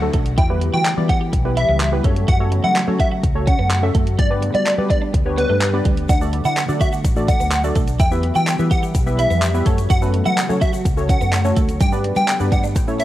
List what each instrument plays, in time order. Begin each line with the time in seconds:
Already playing: ambient pad D3 F#3 A3 F#4, downlifter
0.02 synth stab F#3 A3 D4 F#4 A4
0.13 fingered electric bass B1, clean electric guitar A3, kick, closed hi-hat
0.26 closed hi-hat
0.37 fingered electric bass E2, ambient pad E3 G3 B3 G4, clean electric guitar E4, digital synth lead G5, kick, closed hi-hat
0.50 synth stab G3 B3 E4 G4 B4
0.61 muted clean electric guitar stroke, closed hi-hat
0.73 fingered electric bass E3, clean electric guitar F#4, digital synth lead G5
0.85 muted clean electric guitar stroke, clap, closed hi-hat
0.97 fingered electric bass E3, synth stab G3 B3 E4 G4 D5
1.09 clean electric guitar G4, digital synth lead F#5, kick, closed hi-hat
1.21 clean electric guitar G4
1.33 fingered electric bass B1, muted clean electric guitar stroke, kick, closed hi-hat
1.45 synth stab G3 B3 E4 G4 B4
1.57 clean electric guitar E4, digital synth lead E5, closed hi-hat
1.69 fingered electric bass C#2, clean electric guitar B3
1.80 clap, closed hi-hat
1.92 synth stab G3 B3 E4 G4 B4
2.04 fingered electric bass F#2, ambient pad C#3 F#3 A3 F#4, synth stab A3 C#4 F#4 A4 C#5, clean electric guitar A3, kick, closed hi-hat
2.16 closed hi-hat
2.28 fingered electric bass F#2, clean electric guitar F#4, digital synth lead F#5, kick, closed hi-hat
2.40 synth stab A3 C#4 F#4 A4 C#5
2.52 muted clean electric guitar stroke, closed hi-hat
2.64 fingered electric bass F#3, clean electric guitar E4, digital synth lead F#5
2.76 muted clean electric guitar stroke, clap, closed hi-hat
2.87 fingered electric bass F#3, synth stab A3 C#4 F#4 A4 C#5
3.00 clean electric guitar F#4, digital synth lead E5, kick, closed hi-hat
3.12 clean electric guitar F#4
3.23 fingered electric bass C#2, muted clean electric guitar stroke, kick, closed hi-hat
3.35 synth stab A3 C#4 F#4 A4 C#5
3.47 clean electric guitar C#4, digital synth lead F#5, kick, closed hi-hat
3.59 fingered electric bass F#2, clean electric guitar B3
3.71 clap, closed hi-hat
3.83 synth stab A3 C#4 F#4 A4 E5
3.95 fingered electric bass F#2, clean electric guitar A3, kick, closed hi-hat
4.07 closed hi-hat
4.19 fingered electric bass G2, ambient pad D3 G3 B3 G4, clean electric guitar G3, digital synth lead D5, kick, closed hi-hat
4.30 synth stab B3 D4 G4 B4 D5
4.42 muted clean electric guitar stroke, closed hi-hat
4.54 fingered electric bass G3, clean electric guitar B3, digital synth lead D5, closed hi-hat
4.66 muted clean electric guitar stroke, clap, closed hi-hat
4.78 fingered electric bass G3, synth stab B3 D4 G4 B4 D5
4.90 clean electric guitar D4, digital synth lead D5, kick, closed hi-hat
5.02 clean electric guitar D4
5.14 fingered electric bass D2, muted clean electric guitar stroke, kick, closed hi-hat
5.26 synth stab B3 D4 G4 B4 C#5
5.38 clean electric guitar B3, digital synth lead B4, closed hi-hat
5.50 fingered electric bass G2, clean electric guitar A3
5.62 clap, closed hi-hat
5.73 synth stab B3 D4 G4 B4 D5
5.85 fingered electric bass D2, clean electric guitar G3, kick, closed hi-hat
5.97 closed hi-hat
6.09 fingered electric bass D2, ambient pad F#3 A3 F#4, clean electric guitar D4, digital synth lead F#5, kick, closed hi-hat, shaker
6.21 synth stab A3 D4 F#4 A4 D5, shaker
6.33 muted clean electric guitar stroke, closed hi-hat
6.45 fingered electric bass D3, clean electric guitar E4, digital synth lead F#5, shaker
6.57 muted clean electric guitar stroke, clap, closed hi-hat, shaker
6.68 fingered electric bass D3, synth stab A3 D4 F#4 A4 D5, shaker
6.81 clean electric guitar F#4, digital synth lead E5, kick, closed hi-hat, shaker
6.93 clean electric guitar F#4, shaker
7.04 fingered electric bass A1, muted clean electric guitar stroke, kick, closed hi-hat, shaker
7.16 synth stab A3 D4 F#4 A4 D5, shaker
7.28 clean electric guitar D4, digital synth lead F#5, kick, closed hi-hat, shaker
7.40 fingered electric bass D2, clean electric guitar B3, shaker
7.52 clap, closed hi-hat, shaker
7.64 synth stab A3 D4 F#4 A4 D5, shaker
7.75 fingered electric bass B1, clean electric guitar A3, kick, closed hi-hat, shaker
7.88 closed hi-hat, shaker
8.00 fingered electric bass E2, ambient pad E3 G3 B3 G4, clean electric guitar E4, digital synth lead G5, kick, closed hi-hat, shaker
8.11 synth stab B3 E4 G4 B4 E5, shaker
8.23 muted clean electric guitar stroke, closed hi-hat
8.35 fingered electric bass E3, clean electric guitar F#4, digital synth lead G5, shaker
8.47 muted clean electric guitar stroke, clap, closed hi-hat, shaker
8.59 fingered electric bass E3, synth stab B3 E4 G4 B4 E5, shaker
8.71 clean electric guitar G4, digital synth lead F#5, kick, closed hi-hat, shaker
8.83 clean electric guitar G4, shaker
8.95 fingered electric bass B1, muted clean electric guitar stroke, kick, closed hi-hat, shaker
9.06 synth stab B3 E4 G4 B4 E5, shaker
9.19 clean electric guitar E4, digital synth lead E5, closed hi-hat, shaker
9.30 fingered electric bass F2, clean electric guitar B3, shaker
9.42 clap, closed hi-hat, shaker
9.54 synth stab B3 E4 G4 B4 E5, shaker
9.66 fingered electric bass F#2, ambient pad C#3 F#3 A3 F#4, synth stab A3 C#4 F#4 A4 C#5, clean electric guitar A3, kick, closed hi-hat, shaker
9.78 closed hi-hat, shaker
9.90 fingered electric bass F#2, clean electric guitar F#4, digital synth lead F#5, kick, closed hi-hat, shaker
10.02 synth stab A3 C#4 F#4 A4 B4, shaker
10.14 muted clean electric guitar stroke, closed hi-hat
10.26 fingered electric bass F#3, clean electric guitar E4, digital synth lead F#5, shaker
10.38 muted clean electric guitar stroke, clap, closed hi-hat, shaker
10.49 fingered electric bass F#3, synth stab A3 C#4 F#4 A4 C#5, shaker
10.61 clean electric guitar F#4, digital synth lead E5, kick, closed hi-hat, shaker
10.73 clean electric guitar F#4, shaker
10.85 fingered electric bass C#2, muted clean electric guitar stroke, kick, closed hi-hat, shaker
10.97 synth stab A3 C#4 F#4 A4 C#5, shaker
11.09 clean electric guitar C#4, digital synth lead F#5, kick, closed hi-hat, shaker
11.21 fingered electric bass F#2, clean electric guitar B3, shaker
11.33 clap, closed hi-hat, shaker
11.44 synth stab A3 C#4 F#4 A4 C#5, shaker
11.56 fingered electric bass D2, clean electric guitar A3, kick, closed hi-hat, shaker
11.69 closed hi-hat, shaker
11.80 fingered electric bass G2, ambient pad D3 G3 B3 G4, clean electric guitar G3, digital synth lead G5, kick, closed hi-hat, shaker
11.92 synth stab B3 D4 G4 B4 D5, shaker
12.04 muted clean electric guitar stroke, closed hi-hat
12.16 fingered electric bass G3, clean electric guitar B3, digital synth lead G5, closed hi-hat, shaker
12.28 muted clean electric guitar stroke, clap, closed hi-hat, shaker
12.40 fingered electric bass G2, synth stab B3 D4 G4 B4 D5, shaker
12.52 clean electric guitar D4, digital synth lead F#5, kick, closed hi-hat, shaker
12.64 clean electric guitar D4, shaker
12.76 fingered electric bass A2, ambient pad C#3 E3 A3 E4, muted clean electric guitar stroke, kick, closed hi-hat, shaker
12.88 synth stab A3 C#4 E4 A4 C#5, shaker
13.00 clean electric guitar C#4, digital synth lead E5, closed hi-hat, shaker